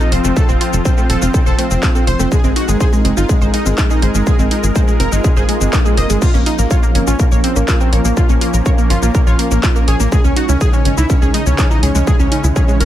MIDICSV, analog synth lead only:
0, 0, Header, 1, 2, 480
1, 0, Start_track
1, 0, Key_signature, -5, "minor"
1, 0, Tempo, 487805
1, 359, Time_signature, 4, 2, 24, 8
1, 12644, End_track
2, 0, Start_track
2, 0, Title_t, "Analog synth lead"
2, 0, Program_c, 0, 81
2, 2, Note_on_c, 0, 63, 92
2, 80, Note_off_c, 0, 63, 0
2, 121, Note_on_c, 0, 60, 65
2, 201, Note_off_c, 0, 60, 0
2, 241, Note_on_c, 0, 60, 64
2, 320, Note_off_c, 0, 60, 0
2, 359, Note_on_c, 0, 69, 94
2, 440, Note_off_c, 0, 69, 0
2, 481, Note_on_c, 0, 60, 65
2, 560, Note_off_c, 0, 60, 0
2, 600, Note_on_c, 0, 60, 66
2, 681, Note_off_c, 0, 60, 0
2, 841, Note_on_c, 0, 60, 67
2, 921, Note_off_c, 0, 60, 0
2, 961, Note_on_c, 0, 60, 67
2, 1040, Note_off_c, 0, 60, 0
2, 1079, Note_on_c, 0, 69, 98
2, 1160, Note_off_c, 0, 69, 0
2, 1202, Note_on_c, 0, 60, 66
2, 1280, Note_off_c, 0, 60, 0
2, 1320, Note_on_c, 0, 60, 66
2, 1400, Note_off_c, 0, 60, 0
2, 1440, Note_on_c, 0, 69, 96
2, 1520, Note_off_c, 0, 69, 0
2, 1560, Note_on_c, 0, 60, 67
2, 1641, Note_off_c, 0, 60, 0
2, 1682, Note_on_c, 0, 60, 64
2, 1760, Note_off_c, 0, 60, 0
2, 1921, Note_on_c, 0, 60, 64
2, 2000, Note_off_c, 0, 60, 0
2, 2039, Note_on_c, 0, 72, 90
2, 2120, Note_off_c, 0, 72, 0
2, 2161, Note_on_c, 0, 60, 66
2, 2240, Note_off_c, 0, 60, 0
2, 2280, Note_on_c, 0, 68, 98
2, 2360, Note_off_c, 0, 68, 0
2, 2401, Note_on_c, 0, 56, 65
2, 2480, Note_off_c, 0, 56, 0
2, 2519, Note_on_c, 0, 66, 89
2, 2600, Note_off_c, 0, 66, 0
2, 2641, Note_on_c, 0, 56, 66
2, 2720, Note_off_c, 0, 56, 0
2, 2759, Note_on_c, 0, 68, 97
2, 2840, Note_off_c, 0, 68, 0
2, 2880, Note_on_c, 0, 56, 65
2, 2959, Note_off_c, 0, 56, 0
2, 2999, Note_on_c, 0, 56, 65
2, 3080, Note_off_c, 0, 56, 0
2, 3120, Note_on_c, 0, 65, 99
2, 3199, Note_off_c, 0, 65, 0
2, 3239, Note_on_c, 0, 56, 65
2, 3320, Note_off_c, 0, 56, 0
2, 3361, Note_on_c, 0, 56, 64
2, 3440, Note_off_c, 0, 56, 0
2, 3479, Note_on_c, 0, 63, 97
2, 3560, Note_off_c, 0, 63, 0
2, 3602, Note_on_c, 0, 56, 64
2, 3680, Note_off_c, 0, 56, 0
2, 3721, Note_on_c, 0, 56, 68
2, 3801, Note_off_c, 0, 56, 0
2, 3842, Note_on_c, 0, 63, 93
2, 3920, Note_off_c, 0, 63, 0
2, 3960, Note_on_c, 0, 56, 66
2, 4041, Note_off_c, 0, 56, 0
2, 4081, Note_on_c, 0, 56, 66
2, 4160, Note_off_c, 0, 56, 0
2, 4199, Note_on_c, 0, 68, 93
2, 4280, Note_off_c, 0, 68, 0
2, 4321, Note_on_c, 0, 56, 65
2, 4400, Note_off_c, 0, 56, 0
2, 4440, Note_on_c, 0, 56, 64
2, 4520, Note_off_c, 0, 56, 0
2, 4680, Note_on_c, 0, 56, 66
2, 4760, Note_off_c, 0, 56, 0
2, 4802, Note_on_c, 0, 56, 66
2, 4880, Note_off_c, 0, 56, 0
2, 4919, Note_on_c, 0, 70, 99
2, 5000, Note_off_c, 0, 70, 0
2, 5041, Note_on_c, 0, 56, 66
2, 5120, Note_off_c, 0, 56, 0
2, 5158, Note_on_c, 0, 56, 67
2, 5240, Note_off_c, 0, 56, 0
2, 5280, Note_on_c, 0, 68, 93
2, 5359, Note_off_c, 0, 68, 0
2, 5399, Note_on_c, 0, 56, 67
2, 5480, Note_off_c, 0, 56, 0
2, 5520, Note_on_c, 0, 56, 65
2, 5599, Note_off_c, 0, 56, 0
2, 5760, Note_on_c, 0, 56, 63
2, 5839, Note_off_c, 0, 56, 0
2, 5879, Note_on_c, 0, 75, 92
2, 5960, Note_off_c, 0, 75, 0
2, 6001, Note_on_c, 0, 56, 66
2, 6080, Note_off_c, 0, 56, 0
2, 6119, Note_on_c, 0, 65, 101
2, 6200, Note_off_c, 0, 65, 0
2, 6241, Note_on_c, 0, 58, 65
2, 6320, Note_off_c, 0, 58, 0
2, 6359, Note_on_c, 0, 63, 92
2, 6440, Note_off_c, 0, 63, 0
2, 6482, Note_on_c, 0, 58, 66
2, 6560, Note_off_c, 0, 58, 0
2, 6599, Note_on_c, 0, 65, 97
2, 6680, Note_off_c, 0, 65, 0
2, 6721, Note_on_c, 0, 58, 65
2, 6800, Note_off_c, 0, 58, 0
2, 6839, Note_on_c, 0, 58, 66
2, 6920, Note_off_c, 0, 58, 0
2, 6961, Note_on_c, 0, 61, 98
2, 7040, Note_off_c, 0, 61, 0
2, 7079, Note_on_c, 0, 58, 66
2, 7160, Note_off_c, 0, 58, 0
2, 7201, Note_on_c, 0, 58, 64
2, 7280, Note_off_c, 0, 58, 0
2, 7319, Note_on_c, 0, 60, 96
2, 7400, Note_off_c, 0, 60, 0
2, 7442, Note_on_c, 0, 58, 64
2, 7520, Note_off_c, 0, 58, 0
2, 7560, Note_on_c, 0, 58, 67
2, 7641, Note_off_c, 0, 58, 0
2, 7682, Note_on_c, 0, 60, 92
2, 7760, Note_off_c, 0, 60, 0
2, 7801, Note_on_c, 0, 58, 65
2, 7881, Note_off_c, 0, 58, 0
2, 7921, Note_on_c, 0, 58, 64
2, 8000, Note_off_c, 0, 58, 0
2, 8040, Note_on_c, 0, 65, 95
2, 8120, Note_off_c, 0, 65, 0
2, 8161, Note_on_c, 0, 58, 63
2, 8240, Note_off_c, 0, 58, 0
2, 8281, Note_on_c, 0, 58, 64
2, 8361, Note_off_c, 0, 58, 0
2, 8520, Note_on_c, 0, 58, 66
2, 8601, Note_off_c, 0, 58, 0
2, 8640, Note_on_c, 0, 58, 64
2, 8719, Note_off_c, 0, 58, 0
2, 8759, Note_on_c, 0, 65, 94
2, 8840, Note_off_c, 0, 65, 0
2, 8880, Note_on_c, 0, 58, 66
2, 8960, Note_off_c, 0, 58, 0
2, 8999, Note_on_c, 0, 58, 64
2, 9080, Note_off_c, 0, 58, 0
2, 9120, Note_on_c, 0, 65, 95
2, 9199, Note_off_c, 0, 65, 0
2, 9239, Note_on_c, 0, 58, 67
2, 9320, Note_off_c, 0, 58, 0
2, 9362, Note_on_c, 0, 58, 65
2, 9440, Note_off_c, 0, 58, 0
2, 9602, Note_on_c, 0, 58, 64
2, 9681, Note_off_c, 0, 58, 0
2, 9720, Note_on_c, 0, 68, 93
2, 9801, Note_off_c, 0, 68, 0
2, 9842, Note_on_c, 0, 58, 66
2, 9920, Note_off_c, 0, 58, 0
2, 9960, Note_on_c, 0, 68, 99
2, 10041, Note_off_c, 0, 68, 0
2, 10082, Note_on_c, 0, 61, 66
2, 10160, Note_off_c, 0, 61, 0
2, 10201, Note_on_c, 0, 66, 91
2, 10281, Note_off_c, 0, 66, 0
2, 10322, Note_on_c, 0, 61, 68
2, 10400, Note_off_c, 0, 61, 0
2, 10440, Note_on_c, 0, 68, 99
2, 10520, Note_off_c, 0, 68, 0
2, 10561, Note_on_c, 0, 61, 65
2, 10640, Note_off_c, 0, 61, 0
2, 10680, Note_on_c, 0, 61, 66
2, 10760, Note_off_c, 0, 61, 0
2, 10800, Note_on_c, 0, 64, 95
2, 10879, Note_off_c, 0, 64, 0
2, 10920, Note_on_c, 0, 61, 66
2, 11001, Note_off_c, 0, 61, 0
2, 11041, Note_on_c, 0, 61, 65
2, 11120, Note_off_c, 0, 61, 0
2, 11159, Note_on_c, 0, 63, 98
2, 11240, Note_off_c, 0, 63, 0
2, 11280, Note_on_c, 0, 61, 66
2, 11359, Note_off_c, 0, 61, 0
2, 11400, Note_on_c, 0, 61, 68
2, 11480, Note_off_c, 0, 61, 0
2, 11520, Note_on_c, 0, 63, 94
2, 11600, Note_off_c, 0, 63, 0
2, 11639, Note_on_c, 0, 61, 66
2, 11720, Note_off_c, 0, 61, 0
2, 11763, Note_on_c, 0, 61, 65
2, 11841, Note_off_c, 0, 61, 0
2, 11880, Note_on_c, 0, 68, 96
2, 11961, Note_off_c, 0, 68, 0
2, 12002, Note_on_c, 0, 61, 64
2, 12080, Note_off_c, 0, 61, 0
2, 12120, Note_on_c, 0, 61, 65
2, 12201, Note_off_c, 0, 61, 0
2, 12360, Note_on_c, 0, 61, 68
2, 12441, Note_off_c, 0, 61, 0
2, 12481, Note_on_c, 0, 61, 67
2, 12560, Note_off_c, 0, 61, 0
2, 12599, Note_on_c, 0, 70, 96
2, 12644, Note_off_c, 0, 70, 0
2, 12644, End_track
0, 0, End_of_file